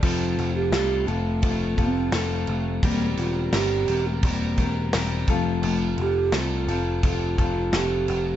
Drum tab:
CC |xxxxxxxx|xxxxxxxx|xxxxxxxx|
SD |--o---o-|--o---o-|--o---o-|
BD |o---oo--|o---oo-o|----oo--|